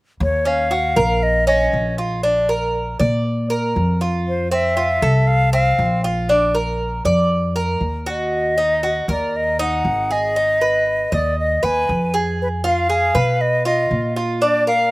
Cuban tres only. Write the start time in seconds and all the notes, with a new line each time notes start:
0.45 C#4
0.71 F#4
0.96 A#4
1.47 C#4
1.98 F4
2.23 D4
2.49 A#4
3.00 D5
3.50 A#4
4.01 F4
4.51 C4
4.77 F4
5.02 A4
5.53 C4
6.04 F4
6.29 D4
6.55 A#4
7.05 D5
7.56 A#4
8.06 F#4
8.58 D#4
8.83 F#4
9.09 A#4
9.59 D#4
10.11 G#4
10.36 D#4
10.61 B4
11.12 D#5
11.63 B4
12.14 G#4
12.64 F4
12.90 G#4
13.15 B4
13.65 F4
14.16 F4
14.42 D4
14.67 A#4